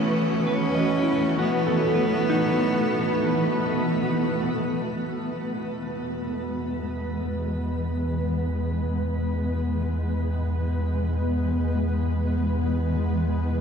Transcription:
Already playing: ambient pad E3 A3 B3 C#4 F#4 B4 C#5, synth drone E3 B3, cello A3, clean electric guitar A4 C#5 D#5
0.47 cello C#4, clean electric guitar B4
0.75 clean electric guitar D#5
1.03 clean electric guitar E4
1.39 cello B3, clean electric guitar F#4
1.67 clean electric guitar A4
1.95 clean electric guitar B4
2.29 clean electric guitar D#4
5.00 sub bass E2, ambient pad G#3
5.98 ambient pad E3

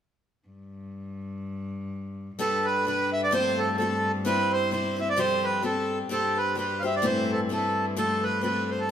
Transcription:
0.48 cello G2
2.37 cello G2, steel-string acoustic guitar G3 D4 A4 B4, accordion A4
2.65 accordion B4
2.85 steel-string acoustic guitar G3 D4 A4 B4, accordion B4
3.13 accordion E5
3.23 accordion D5
3.31 steel-string acoustic guitar A2 F3 A3 C4 F4 A4, accordion C5
3.59 accordion A4
3.78 steel-string acoustic guitar A3 C4 F4, accordion A4
3.82 steel-string acoustic guitar A4
4.25 steel-string acoustic guitar G3 C4 E4 C5, accordion B4
4.53 accordion C5
4.71 steel-string acoustic guitar G3 C4 E4 C5, accordion C5
4.97 steel-string acoustic guitar C4 E4 C5, accordion E5
5.10 accordion D5
5.17 steel-string acoustic guitar F3 G3 C4 G4 A4, accordion C5
5.44 accordion B4
5.62 steel-string acoustic guitar G3 C4 G4 A4, accordion A4
6.09 cello G2, steel-string acoustic guitar G3 D4 G4 C5, accordion A4
6.38 accordion B4
6.55 steel-string acoustic guitar G3 D4 G4 C5
6.60 accordion B4
6.80 steel-string acoustic guitar C5, accordion F5
6.84 steel-string acoustic guitar D4 G4, accordion E5
6.96 accordion D5
7.02 steel-string acoustic guitar A2 E3 A3 C4 E4 B4, accordion C5
7.32 accordion A4
7.49 steel-string acoustic guitar A3 C4 E4 B4, accordion A4
7.97 steel-string acoustic guitar F3 A3 C4 F4 A4, accordion A4
8.23 accordion B4
8.41 steel-string acoustic guitar A3 C4 F4 A4, accordion B4
8.71 accordion C5
8.80 accordion A4

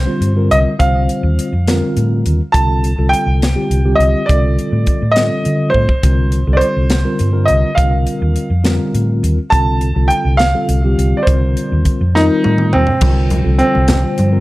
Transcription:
Already playing: grand piano C5
0.06 tine electric piano D3 G3 C4 F4 C5
0.21 fingered electric bass G2, closed hi-hat
0.36 tine electric piano D3 G3 C4 F4 A#4
0.51 fingered electric bass C2, grand piano D#5, closed hi-hat
0.79 fingered electric bass C2, tine electric piano D3 G3 C4 F4 C5, grand piano F5, kick, closed hi-hat
1.09 closed hi-hat
1.23 fingered electric bass D#2
1.39 closed hi-hat
1.52 fingered electric bass F2
1.67 tine electric piano D3 G3 C4 F4 A#4, snare, closed hi-hat
1.97 fingered electric bass A2, closed hi-hat
2.26 fingered electric bass D#2, closed hi-hat
2.52 fingered electric bass C2, tine electric piano D3 G3 C4 F4 A4, grand piano A5, kick, closed hi-hat
2.84 closed hi-hat
2.98 fingered electric bass C2, tine electric piano D3 G3 C4 F4 A4
3.09 grand piano G5
3.13 closed hi-hat
3.26 fingered electric bass C2
3.42 snare, closed hi-hat
3.55 tine electric piano D3 G3 C4 F4 G4
3.70 fingered electric bass C2, closed hi-hat
3.85 tine electric piano D3 G3 C4 F4 G4
3.96 fingered electric bass C2, grand piano D#5
4.00 closed hi-hat
4.26 fingered electric bass C2, tine electric piano D3 G3 C4 F4 A4, grand piano D5, kick
4.30 closed hi-hat
4.59 closed hi-hat
4.72 fingered electric bass A2
4.87 kick, closed hi-hat
5.02 fingered electric bass A2
5.12 grand piano D#5
5.16 tine electric piano D3 G3 C4 F4 A4, snare, closed hi-hat
5.45 fingered electric bass D3, closed hi-hat
5.70 grand piano C5
5.74 fingered electric bass A2, kick
5.89 kick
6.03 fingered electric bass C2, tine electric piano D3 G3 C4 F4 A#4, kick, closed hi-hat
6.32 closed hi-hat
6.47 fingered electric bass C2, tine electric piano D3 G3 C4 F4 A4
6.53 grand piano C5 D5
6.61 closed hi-hat
6.77 fingered electric bass C2
6.90 snare, closed hi-hat
7.04 tine electric piano D3 G3 C4 F4 A#4
7.19 fingered electric bass G2, closed hi-hat
7.32 tine electric piano D3 G3 C4 F4 A#4
7.46 fingered electric bass C2, grand piano D#5, closed hi-hat
7.75 fingered electric bass C2, tine electric piano D3 G3 C4 F4 A#4, grand piano F5, kick, closed hi-hat
8.07 closed hi-hat
8.22 fingered electric bass D#2
8.36 closed hi-hat
8.50 fingered electric bass F2
8.63 tine electric piano D3 G3 C4 F4 A#4, snare, closed hi-hat
8.94 fingered electric bass A2, closed hi-hat
9.23 fingered electric bass D#2, closed hi-hat
9.50 fingered electric bass C2, tine electric piano D3 G3 C4 F4 A4, grand piano A5, kick, closed hi-hat
9.81 closed hi-hat
9.96 fingered electric bass C2, tine electric piano D3 G3 C4 F4 A4
10.08 grand piano G5, closed hi-hat
10.25 fingered electric bass C2
10.37 grand piano F5, snare, closed hi-hat
10.54 tine electric piano D3 G3 C4 F4 A4
10.69 fingered electric bass C2, closed hi-hat
10.84 tine electric piano D3 G3 C4 F4 G4
10.98 fingered electric bass C2, closed hi-hat
11.17 grand piano D5
11.23 tine electric piano D3 G3, grand piano C5
11.27 fingered electric bass C2, tine electric piano C4 F4 A#4, kick, closed hi-hat
11.57 closed hi-hat
11.72 fingered electric bass D#2
11.85 kick, closed hi-hat
12.01 fingered electric bass F2
12.15 tine electric piano D#3 G3 C4 F4 A#4, grand piano D#4, snare
12.44 fingered electric bass A2, high tom
12.58 mid tom
12.73 fingered electric bass D#2, grand piano C4, mid tom
12.87 floor tom
13.01 fingered electric bass C2, tine electric piano D3 G3 C4 F4 A#4, kick, crash, muted conga
13.30 closed hi-hat, high conga, low conga
13.44 fingered electric bass C2, tine electric piano D3 G3 C4 F4 A4
13.59 grand piano C4, closed hi-hat
13.75 fingered electric bass C2, high conga, low conga
13.88 snare, closed hi-hat, muted conga, low conga
14.03 tine electric piano D3 G3 C4 F4 C5
14.18 fingered electric bass G2, closed hi-hat, high conga, low conga
14.32 tine electric piano D3 G3 C4 F4 A#4

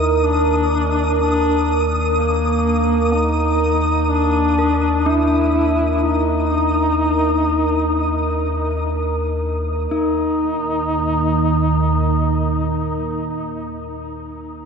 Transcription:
Already playing: synth drone D#2, duduk D#4, ambient pad A#4 D#6, synth texture D#6
0.24 duduk D4
1.21 duduk D4
2.17 duduk A#3
3.13 duduk D#4
4.10 duduk D4
4.59 synth bell A#4
5.06 synth bell D4, duduk E4
6.04 duduk D#4
9.91 synth drone D#2 D#3, ambient pad A#3, synth bell D#4, duduk D#4
10.21 ambient pad A#4

